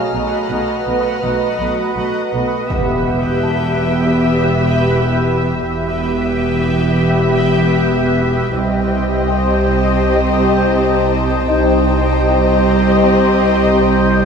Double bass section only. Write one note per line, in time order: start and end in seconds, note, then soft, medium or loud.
0.14 0.22 B1 soft
0.50 0.58 B1 soft
0.87 0.95 B1 soft
1.23 1.31 B1 soft
1.60 1.68 B1 soft
1.96 2.04 B1 soft
2.34 2.42 B1 soft
2.71 5.59 E1 soft
5.64 8.52 E1 soft
8.56 11.45 C2 soft
11.49 14.25 C2 soft